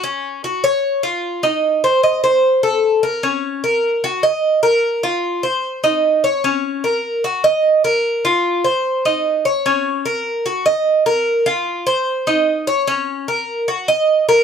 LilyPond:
\new Staff \with { instrumentName = "Cuban tres" } { \time 4/4 \key bes \minor \tempo 4 = 150 des'4 ges'8 des''4 f'4 ees'8~ | ees'8 c''8 ees''8 c''4 a'4 bes'8 | des'4 bes'4 ges'8 ees''4 bes'8~ | bes'8 f'4 c''4 ees'4 des''8 |
des'4 bes'4 ges'8 ees''4 bes'8~ | bes'8 f'4 c''4 ees'4 des''8 | des'4 bes'4 ges'8 ees''4 bes'8~ | bes'8 f'4 c''4 ees'4 des''8 |
des'4 bes'4 ges'8 ees''4 bes'8 | }